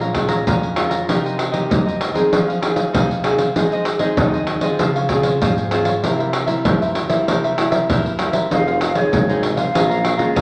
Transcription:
Already playing: A#2 C#4 F4
0.01 C#5 F5 A#5, pandeiro
0.14 G#3 C#4 F4, muted cavaquinho stroke, pandeiro, surdo
0.28 C#5 F5 A#5, pandeiro
0.47 F2 G#4 C#5 F5 A#5, pandeiro, surdo
0.63 pandeiro
0.76 G#3 C#4 F4 G#4 C#5 F5 A#5, pandeiro
0.89 C#5 F5 A#5, pandeiro
1.09 C3 A#3 D#4 G4 A#4 C5 D#5, pandeiro, surdo
1.24 A#4 C5 D#5, pandeiro
1.38 muted cavaquinho stroke, pandeiro
1.52 A#3 D#4 G4 A#4 C5 D#5, pandeiro
1.69 G2 D#4 A#4 C5 D#5, pandeiro, surdo
1.86 A#4 C5 D#5, pandeiro
2.01 pandeiro
2.13 C4 D#4 G#4 A#4 C5 D#5, pandeiro
2.31 F3 D#4 G#4 C5 F5, pandeiro, surdo
2.48 G#4 C5 F5, pandeiro
2.62 C4 D#4 G#4, muted cavaquinho stroke, pandeiro
2.76 G#4 C5 F5, pandeiro
2.93 C3 D#4 G#4 C5 F5, pandeiro, surdo
3.11 pandeiro
3.24 C4 D#4 G#4 C5 F5, pandeiro
3.38 G#4 C5 F5, pandeiro
3.56 G#3 C4 D#4 G#4 C5 D#5, pandeiro, surdo
3.72 G#4 C5 D#5, pandeiro
3.85 muted cavaquinho stroke, pandeiro
3.99 C4 D#4 G#4 C5 D#5, pandeiro
4.17 D#3 D#4 G#4 C5 D#5, pandeiro, surdo
4.34 G#4 C5 D#5, pandeiro
4.47 pandeiro
4.61 C4 F4 G#4 C5 D#5, pandeiro
4.79 C#3 F4 C5 C#5 F5, pandeiro, surdo
4.96 C5 C#5 F5, pandeiro
5.09 C4 F4 G#4, muted cavaquinho stroke, pandeiro, surdo
5.23 C5 C#5 F5, pandeiro
5.41 G#2 F4 C5 C#5 F5, pandeiro, surdo
5.58 pandeiro
5.71 C4 F4 G#4 C5 C#5 F5, pandeiro
5.85 C5 C#5 F5, pandeiro
6.03 C3 G3 A#3 E4 A#4 C5 E5, pandeiro, surdo
6.19 A#4 C5 E5, pandeiro
6.33 muted cavaquinho stroke, pandeiro
6.46 G3 A#3 E4 A#4 C5 E5, pandeiro
6.65 G2 E4 A#4 C5 E5, pandeiro, surdo
6.82 A#4 C5 E5, pandeiro
6.95 pandeiro
7.09 G3 A#3 E4 A#4 C5 E5, pandeiro
7.27 C3 E4 A#4 C5 E5, pandeiro, surdo
7.44 A#4 C5 E5, pandeiro
7.57 G3 A#3 E4, muted cavaquinho stroke, pandeiro
7.71 A#4 C5 E5, pandeiro
7.89 G2 E4 A#4 C5 E5, pandeiro, surdo
8.06 pandeiro
8.19 G3 A#3 E4 A#4 C5 E5, pandeiro
8.33 A#4 C5 E5, pandeiro
8.51 F1 F3 C4 D#4 G#4 C5 F5, pandeiro, surdo
8.67 G#4 C5 F5, pandeiro
8.80 muted cavaquinho stroke, pandeiro
8.94 F1 C4 D#4 G#4 C5 C#5 F5, pandeiro
9.12 G#1 C3 D#4 G#4 C5 F5, pandeiro, surdo
9.28 C4 D#4 G#4 C5 F5, pandeiro
9.43 D#5, pandeiro
9.56 G#4 C5 F5, pandeiro
9.74 A#1 A#2 G#3 C#4 F4 G#4 C#5 F5 A#5, pandeiro, surdo
9.90 C#5 F5 A#5, pandeiro
10.04 muted cavaquinho stroke, pandeiro
10.17 A#2 G#3 C#4 F4 C#5 F5 A#5, pandeiro
10.35 F2 G#4 C#5 F5 A#5, pandeiro, surdo

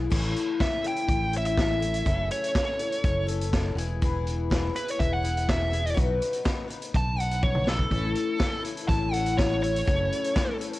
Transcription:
Already playing: B3 E4 G#4
0.10 A1 A2 E3 A3 C#4 E4 A4, kick, crash
0.36 closed hi-hat
0.60 A3 C#4 E4 A4 E5, kick, snare, closed hi-hat
0.83 A3 C#4 E4 A4, closed hi-hat
0.88 G5
0.96 closed hi-hat
1.08 A1, kick, closed hi-hat
1.32 A3 C#4 E4 A4, closed hi-hat
1.38 E5
1.45 E5, closed hi-hat
1.58 kick, snare, closed hi-hat
1.80 A3 C#4 E4 A4, closed hi-hat
1.94 closed hi-hat
2.05 F#1 F#2 C#3 E3 A3 C#4 A4, kick, closed hi-hat
2.31 C#5, closed hi-hat
2.44 closed hi-hat
2.55 E3 A3 C#4 A4, kick, snare, closed hi-hat
2.79 E3 A3 C#4 A4, closed hi-hat
2.92 closed hi-hat
3.04 F#1, kick, closed hi-hat
3.27 E3 A3 C#4 A4, closed hi-hat
3.41 closed hi-hat
3.53 kick, snare, closed hi-hat
3.75 E1 E4 G#4, closed hi-hat
3.80 B3
4.02 E3 B3 E4 G#4, kick, closed hi-hat
4.27 closed hi-hat
4.50 E3 B3 E4 G#4, kick, snare, closed hi-hat
4.74 B3 E4 G#4 B4, closed hi-hat
4.88 C#5, closed hi-hat
4.99 E1 E5, kick, closed hi-hat
5.13 F#5
5.23 B3 E4 G#4, closed hi-hat
5.37 closed hi-hat
5.49 E5, kick, snare, closed hi-hat
5.71 B3 E4 G#4, closed hi-hat
5.87 closed hi-hat
5.94 B1 B2 F#3 B3 D#4 B4, kick, closed hi-hat
6.22 closed hi-hat
6.33 closed hi-hat
6.43 F#3 B3 D#4 B4, kick, snare, closed hi-hat
6.68 B3 D#4 B4, closed hi-hat
6.82 closed hi-hat
6.94 B1 A5, kick, closed hi-hat
7.17 B3 D#4 B4 F#5, closed hi-hat
7.31 closed hi-hat
7.43 C#5, kick, high tom
7.55 mid tom
7.66 B3 D#4 A4 B4, snare
7.79 kick
7.91 A1 A2 E3 A3 C#4 E4 A4, kick, closed hi-hat
8.15 closed hi-hat
8.38 A3 C#4 E4 A4, kick, snare, closed hi-hat
8.61 A3 C#4 E4 A4, closed hi-hat
8.77 closed hi-hat
8.88 A1 A5, kick, snare, closed hi-hat
9.11 A3 C#4 E4 A4 F#5, closed hi-hat
9.26 closed hi-hat
9.37 C#5, kick, snare, closed hi-hat
9.61 A3 C#4 E4 A4 C#5, closed hi-hat
9.76 closed hi-hat
9.84 F#1 F#2 C#3 E3 A3 C#4 A4, kick, closed hi-hat
10.12 closed hi-hat
10.24 closed hi-hat
10.34 E3 A3 C#4 A4, kick, snare, closed hi-hat
10.58 E3 A3 C#4 A4, closed hi-hat
10.73 closed hi-hat

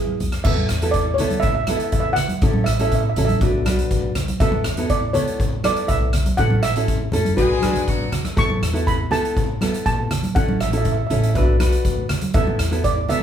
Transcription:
Already playing: B3 E4 G#4
0.07 high conga
0.20 B1, closed hi-hat, high conga, low conga
0.32 E2, cross-stick, closed hi-hat
0.44 E2 B3 E4 A4 E5, kick, crash
0.57 high conga
0.69 E2, cross-stick, closed hi-hat
0.82 B3 E4 A4, closed hi-hat
0.91 D5, kick, closed hi-hat
1.14 C#5
1.18 C#2 B3 E4 A4, closed hi-hat, low conga
1.30 closed hi-hat, high conga
1.40 E5, kick, closed hi-hat
1.48 E5
1.55 E5
1.64 E5, cross-stick, closed hi-hat
1.68 B3 E4 A4 E5, high conga
1.77 E5, closed hi-hat
1.84 E5
1.92 E2 E5, kick, closed hi-hat
2.00 E5
2.13 F#5, cross-stick, closed hi-hat, low conga
2.28 closed hi-hat, high conga
2.42 A1 C#4 E4 A4, kick, closed hi-hat
2.53 high conga
2.64 A1 E5, cross-stick, closed hi-hat
2.73 E5
2.79 C#4 E4 A4 E5, closed hi-hat
2.88 E5, kick, closed hi-hat
2.95 E5
3.01 E5
3.10 E5
3.16 A1 C#4 E4 A4 E5, closed hi-hat, low conga
3.25 E5, closed hi-hat, high conga
3.41 B1 D4 F#4 B4, kick, closed hi-hat
3.65 D4 F#4 B4, cross-stick, closed hi-hat, high conga
3.79 closed hi-hat
3.91 B1, kick, closed hi-hat
4.15 cross-stick, closed hi-hat, low conga
4.28 closed hi-hat, high conga
4.40 E2 B3 E4 A4 E5, kick, closed hi-hat
4.52 high conga
4.64 E2, cross-stick, closed hi-hat
4.77 B3 E4 A4, closed hi-hat
4.90 D5, kick, closed hi-hat
5.13 C#2 B3 E4 A4 C#5, closed hi-hat, low conga
5.28 closed hi-hat
5.40 kick, closed hi-hat
5.64 B3 E4 A4 D5, cross-stick, closed hi-hat, high conga
5.76 closed hi-hat
5.88 B1 E5, kick, closed hi-hat
6.13 cross-stick, closed hi-hat, low conga
6.26 closed hi-hat, high conga
6.37 A1 C#4 E4 A4 F#5, kick, closed hi-hat
6.50 high conga
6.63 A1 E5, cross-stick, closed hi-hat
6.76 C#4 E4 A4, closed hi-hat
6.88 kick, closed hi-hat
7.12 F#1 C#4 E4 A4, closed hi-hat, high conga, low conga
7.25 closed hi-hat, high conga
7.36 B1 G#3 D4 F#4 G#4 B4, kick, closed hi-hat
7.62 D4 F#4 B4, cross-stick, closed hi-hat, high conga
7.74 closed hi-hat, low conga
7.88 B1 F#3 F#4, kick, closed hi-hat
8.12 cross-stick, closed hi-hat, low conga
8.24 cross-stick, closed hi-hat, high conga
8.36 E2 B3 E4 A4 C#6, kick, closed hi-hat
8.50 high conga
8.62 E2, cross-stick, closed hi-hat
8.73 B3 E4 A4, closed hi-hat
8.87 B5, kick, closed hi-hat
9.11 C#2 B3 E4 A4 A5, closed hi-hat, low conga
9.25 closed hi-hat
9.37 kick, closed hi-hat
9.61 B3 E4 A4, cross-stick, closed hi-hat, high conga
9.74 closed hi-hat
9.86 A#1 A5, kick, closed hi-hat
10.11 cross-stick, closed hi-hat, low conga
10.23 closed hi-hat, high conga
10.35 A1 C#4 E4 A4 F#5, kick, closed hi-hat
10.49 high conga
10.60 A1 E5, cross-stick, closed hi-hat
10.71 C#4 E4 A4 E5, closed hi-hat
10.78 E5
10.85 E5, kick, closed hi-hat
10.93 E5
10.98 E5
11.07 C#4 E4 E5, closed hi-hat, low conga
11.11 A1 A4 E5
11.21 E5, closed hi-hat
11.30 E5
11.35 B1 D4 F#4 B4 E5, kick, closed hi-hat
11.43 E5
11.60 D4 F#4 B4, cross-stick, closed hi-hat, high conga
11.72 closed hi-hat
11.85 D2, kick, closed hi-hat
12.09 cross-stick, closed hi-hat, low conga
12.21 closed hi-hat, high conga
12.34 E2 B3 E4 A4 E5, kick, closed hi-hat
12.47 high conga
12.59 E2, cross-stick, closed hi-hat
12.71 B3 E4 A4, closed hi-hat
12.84 D5, kick, closed hi-hat
13.08 C#2 B3 E4 A4 E5, closed hi-hat, low conga

